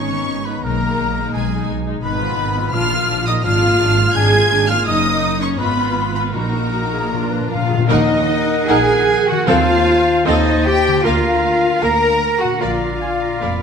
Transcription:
Already playing: double bass section G#1, harp G#2 B3 D#5, french horn section C#4, cello section C#4, violin section C#5 C#6, oboe C#5, flute C#6
0.10 harp D#3, viola section B3 D#4
0.29 double bass section G#1, harp B3
0.46 french horn section B3, cello section B3, viola section B3 D#4, oboe B4, violin section B4 B5, harp D#5, flute B5
0.63 double bass section B1, harp B2, viola section G#3 D#4, french horn section A#3, cello section A#3, violin section A#4 A#5, oboe A#4, flute A#5
0.83 viola section G#3 D#4, harp B3
0.99 double bass section B1, harp G#3
1.18 viola section G#3 D#4, harp D#5
1.33 double bass section B1, harp B2, french horn section G#3, cello section G#3, oboe G#4, violin section G#4 G#5, flute G#5
1.52 viola section G#3 D#4, harp B3
1.68 double bass section B1, harp G#3
1.86 viola section G#3 D#4, harp D#5
2.03 double bass section G#1, harp G#2, viola section D#3 D#4, french horn section B3, cello section B3, violin section B4 B5, oboe B4, flute B5
2.20 harp D#3, viola section F3 F4
2.37 double bass section G#1, viola section D#3 D#4, harp B3
2.55 viola section F3 F4, harp D#5
2.72 double bass section A#1, timpani A#2, harp A#2, viola section F3 D4, cello section F4, french horn section F4, violin section F5 F6, oboe F5, flute F6
2.91 harp F3, viola section A#3 F4
3.09 double bass section A#1, viola section F3 D4, harp A#3
3.26 viola section A#3 F4, french horn section D#4, cello section D#4, harp D5, violin section D#5 D#6, oboe D#5, flute D#6
3.44 double bass section G#1, harp G#2, viola section G#3 D4, french horn section F4, cello section F4, violin section F5 F6, oboe F5, flute F6
3.63 harp G#3, viola section A#3 F4
3.80 double bass section G#1, viola section G#3 D4, harp A#3
3.97 viola section A#3 F4, harp D5
4.14 double bass section G#1, harp G#2, viola section G#3 D4, french horn section G#4, cello section G#4, violin section G#5 G#6, oboe G#5, flute G#6
4.33 harp G#3, viola section A#3 F4
4.50 double bass section G#1, viola section G#3 D4, harp A#3
4.68 viola section A#3 F4, french horn section F4, cello section F4, harp D5, violin section F5 F6, oboe F5, flute F6
4.86 double bass section F#1, harp F#2, viola section A#3 D#4, french horn section D#4, cello section D#4, violin section D#5 D#6, oboe D#5, flute D#6
5.05 harp F#3
5.22 harp A#3
5.40 french horn section C#4, cello section C#4, oboe C#5, violin section C#5 C#6, harp D#5, flute C#6
5.58 double bass section G#1, harp G#2, french horn section B3, viola section B3 F4, cello section B3, violin section B4 B5, oboe B4, flute B5
5.77 harp G#3
5.96 harp B3
6.14 french horn section B3, cello section B3, violin section B4 B5, oboe B4, harp F5, flute B5
6.33 double bass section A#1, timpani A#2, harp A#2, french horn section A#3, cello section A#3, viola section D#4 F#4, violin section A#4 A#5, oboe A#4, flute A#5
6.54 harp A#3
6.73 harp D#4, clarinet F#4
6.92 clarinet G#4, harp D#5
7.11 harp A#2, viola section D4 F4, clarinet A#4
7.19 timpani A#2
7.27 timpani A#2, clarinet B4
7.31 timpani A#2, harp F3
7.41 timpani A#2
7.48 timpani A#2, harp D4, cello section F4, french horn section F4, clarinet A#4, violin section F5, trumpet section F5, flute F5
7.55 timpani A#2
7.63 timpani A#2
7.69 timpani A#2, harp D#3 F5, clarinet G#4
7.77 timpani A#2, harp A#3
7.81 harp F#4
7.86 double bass section D#2, timpani D#3, viola section D#4 A#4, french horn section D#4, cello section D#4, clarinet A#4, harp D#5, flute D#5, trumpet section D#5, violin section D#5 F#5, oboe F#5
8.68 double bass section A#1, viola section D#4 A#4, cello section G#4, french horn section G#4, violin section F#5 G#5, trumpet section G#5, flute G#5
9.27 cello section F#4, french horn section F#4, flute F#5, violin section F#5, trumpet section F#5
9.31 harp D#3
9.35 harp A3
9.40 harp F4
9.44 double bass section D#2, timpani D#3, viola section C4 A4, cello section F4, harp C5, clarinet C5, flute F5, violin section F5, trumpet section F5
9.48 french horn section F4, oboe A5
10.25 double bass section D#2, viola section C4 A4, french horn section D#4, cello section D#4, clarinet C5, flute D#5, trumpet section D#5, violin section D#5 F5, oboe A5
10.65 cello section G4, french horn section G4, flute G5, trumpet section G5, violin section G5
10.87 harp D3
10.92 harp A#3
10.96 harp F4
11.01 viola section A#3 A#4, cello section F4, harp A#4, clarinet A#4
11.05 double bass section D2, french horn section F4, trumpet section F5, violin section F5, flute F5, oboe A#5
11.81 double bass section D2, viola section A#3 A#4, clarinet A#4, french horn section A#4, cello section A#4, violin section F5 A#5, trumpet section A#5, flute A#5, oboe A#5
12.40 harp A#2, cello section F#4, french horn section F#4, violin section F#5, trumpet section F#5, flute F#5
12.48 harp A#3
12.52 harp D4
12.57 double bass section A#1, viola section A#3 A#4, french horn section F4, cello section F4, harp A#4, trumpet section F5
12.61 clarinet D5, violin section D5 F5, flute F5, oboe A#5
13.01 oboe G#5
13.22 oboe A#5
13.40 double bass section F1, viola section A#3 A#4, violin section D5, oboe B5

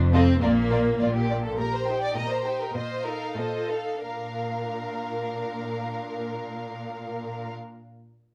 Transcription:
Already playing: double bass section F1, cello section F2
0.13 viola section C4, violin section F4 A4 D#5
0.42 double bass section A#1, cello section A#2, viola section A#3, violin section F4 A#4 D5
0.71 violin section F4 A#4 D5
0.99 double bass section A#1, cello section A#2, violin section F4 D5
1.14 violin section G4
1.30 violin section D5
1.44 violin section A4
1.58 cello section A#2, viola section G4 A#4, violin section A#4 A#5
1.74 violin section C5
1.87 viola section D#4 G4, violin section G5
2.01 violin section D5
2.16 cello section A#2, viola section G4 A#4, violin section D#5 A#5
2.30 violin section C5
2.46 viola section D#4 G4, violin section G5
2.61 violin section A#4
2.75 cello section A#2, viola section F4 C5, violin section C5 D#5
3.05 viola section D#4 A4, violin section A#4 F5
3.36 cello section A#2, viola section F4 C5, violin section A4 D#5
3.70 viola section D#4 A4, violin section F5
4.03 cello section A#2, viola section D4 A#4, violin section A#4 F5

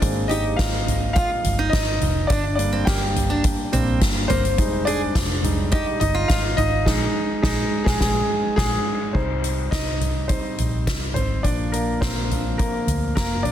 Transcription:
Already playing: grand piano D4 D5
0.01 fingered electric bass G#1, grand piano G#3 A#3 C4, kick, closed hi-hat
0.28 grand piano D#4 D#5, steel-string acoustic guitar G4, closed hi-hat
0.56 fingered electric bass G#1, grand piano F4 F5, kick, snare, closed hi-hat
0.88 closed hi-hat, floor tom
1.13 steel-string acoustic guitar F4, grand piano F4 F5, kick, closed hi-hat
1.44 fingered electric bass G1, closed hi-hat, floor tom
1.59 steel-string acoustic guitar D#4
1.69 fingered electric bass G#1, grand piano D#4 D#5, kick, snare, closed hi-hat
2.01 fingered electric bass F1, closed hi-hat, floor tom
2.27 fingered electric bass G1, steel-string acoustic guitar D4, grand piano D4 D5, kick, closed hi-hat
2.55 grand piano G3 A#3 D4 D5, closed hi-hat
2.73 steel-string acoustic guitar C4
2.85 fingered electric bass G1, steel-string acoustic guitar A#3, grand piano G4 G5, kick, snare, closed hi-hat
3.16 closed hi-hat, floor tom
3.30 steel-string acoustic guitar D4
3.44 kick, closed hi-hat
3.72 fingered electric bass A#1, grand piano G3 A#3 D4, steel-string acoustic guitar C4, closed hi-hat, floor tom
4.01 fingered electric bass G1, kick, snare, closed hi-hat
4.28 fingered electric bass G1, steel-string acoustic guitar A#3, grand piano C4 C5, closed hi-hat, floor tom
4.45 closed hi-hat
4.58 fingered electric bass F1, grand piano G3 G#3 D#4, kick, closed hi-hat
4.85 grand piano D4 D5, steel-string acoustic guitar G#4, closed hi-hat
5.15 fingered electric bass F1, kick, snare, closed hi-hat
5.43 grand piano G3 G#3 D#4, closed hi-hat, floor tom
5.72 grand piano D#4 D#5, steel-string acoustic guitar G4, kick, closed hi-hat
6.00 fingered electric bass G1, grand piano D#4 D#5, closed hi-hat, floor tom
6.15 steel-string acoustic guitar F4
6.28 fingered electric bass G#1, grand piano F4 F5, kick, snare, closed hi-hat
6.57 fingered electric bass G#1, grand piano D#4 D#5, closed hi-hat, floor tom
6.86 fingered electric bass A#1, grand piano G#3 D#4, kick, snare, crash
7.42 fingered electric bass A#1, grand piano G#3 D#4, kick, snare
7.84 fingered electric bass A#1, grand piano G#3 G#4, kick, snare
7.99 fingered electric bass A#1, grand piano G#3 G#4, kick, snare
8.56 fingered electric bass A#1, grand piano G#3 G#4, kick, snare, crash
9.13 fingered electric bass C2, grand piano G3 C4 D#4 C5, kick, crash
9.44 closed hi-hat
9.71 fingered electric bass C2, grand piano D#4 D#5, kick, snare, closed hi-hat
10.01 closed hi-hat, floor tom
10.28 grand piano G3 C4 D#4 C5, kick, closed hi-hat
10.58 fingered electric bass A#1, closed hi-hat, floor tom
10.87 fingered electric bass C2, kick, snare, closed hi-hat
11.14 fingered electric bass G#1, grand piano C4 C5, closed hi-hat, floor tom
11.43 fingered electric bass A#1, grand piano F3 A#3 D4 D5, kick, closed hi-hat
11.72 grand piano A#3 A#4, closed hi-hat
12.01 fingered electric bass A#1, grand piano C4 C5, kick, snare, closed hi-hat
12.30 grand piano F3 A#3 D4, closed hi-hat, floor tom
12.58 grand piano A#3 A#4, kick, closed hi-hat
12.87 fingered electric bass D2, closed hi-hat, floor tom
13.15 fingered electric bass F1, grand piano A#3 A#4, kick, snare, closed hi-hat
13.43 fingered electric bass A#1, grand piano D4 D5, closed hi-hat, floor tom

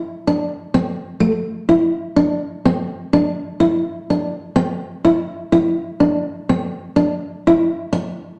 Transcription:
0.27 steel-string acoustic guitar D4
0.74 steel-string acoustic guitar C4
1.20 steel-string acoustic guitar A3
1.69 steel-string acoustic guitar E4
2.16 steel-string acoustic guitar D4
2.65 steel-string acoustic guitar C4
3.13 steel-string acoustic guitar D4
3.60 steel-string acoustic guitar E4
4.10 steel-string acoustic guitar D4
4.56 steel-string acoustic guitar C4
5.05 steel-string acoustic guitar E4
5.52 steel-string acoustic guitar E4
6.00 steel-string acoustic guitar D4
6.49 steel-string acoustic guitar C4
6.96 steel-string acoustic guitar D4
7.47 steel-string acoustic guitar E4
7.93 muted steel-string acoustic guitar stroke

